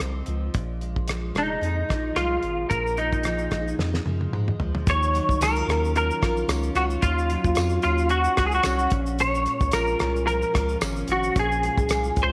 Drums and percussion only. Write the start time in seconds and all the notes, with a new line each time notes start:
0.00 cross-stick
0.26 closed hi-hat
0.54 kick, closed hi-hat
0.81 closed hi-hat
0.96 kick
1.08 cross-stick, closed hi-hat
1.35 cross-stick, closed hi-hat
1.63 closed hi-hat
1.90 kick, cross-stick, closed hi-hat
2.16 cross-stick, closed hi-hat
2.43 closed hi-hat
2.71 kick, closed hi-hat, shaker
2.87 shaker
2.97 closed hi-hat, shaker
3.12 kick, shaker
3.23 cross-stick, closed hi-hat, shaker
3.38 shaker
3.51 kick, cross-stick, closed hi-hat, shaker
3.68 shaker
3.79 snare
3.94 snare
4.06 high tom
4.21 high tom
4.33 mid tom
4.48 mid tom
4.60 floor tom
4.75 floor tom
4.87 kick, closed hi-hat, shaker
5.03 shaker
5.15 closed hi-hat, shaker
5.29 kick, shaker
5.41 cross-stick, closed hi-hat, tambourine, shaker
5.55 shaker
5.69 cross-stick, closed hi-hat, shaker
5.85 shaker
5.96 closed hi-hat, shaker
6.11 shaker
6.23 kick, cross-stick, closed hi-hat, shaker
6.37 shaker
6.49 cross-stick, closed hi-hat, tambourine, shaker
6.63 shaker
6.75 closed hi-hat, shaker
6.90 shaker
7.02 kick, closed hi-hat, shaker
7.19 shaker
7.30 closed hi-hat, shaker
7.44 kick, shaker
7.55 cross-stick, closed hi-hat, tambourine, shaker
7.69 shaker
7.82 closed hi-hat, shaker
7.98 shaker
8.09 closed hi-hat, shaker
8.24 shaker
8.37 kick, cross-stick, closed hi-hat, shaker
8.52 shaker
8.63 cross-stick, closed hi-hat, tambourine, shaker
8.79 shaker
8.90 kick, closed hi-hat, shaker
9.06 shaker
9.19 closed hi-hat, shaker
9.35 shaker
9.46 closed hi-hat, shaker
9.60 kick, shaker
9.72 cross-stick, closed hi-hat, tambourine, shaker
9.87 shaker
9.99 cross-stick, closed hi-hat, shaker
10.16 shaker
10.28 closed hi-hat, shaker
10.42 shaker
10.55 kick, cross-stick, closed hi-hat, shaker
10.69 shaker
10.81 cross-stick, closed hi-hat, tambourine, shaker
10.96 shaker
11.08 closed hi-hat, shaker
11.23 shaker
11.36 kick, closed hi-hat, shaker
11.52 shaker
11.63 closed hi-hat, shaker
11.78 kick, shaker
11.89 cross-stick, closed hi-hat, tambourine, shaker
12.04 shaker
12.16 kick, closed hi-hat, shaker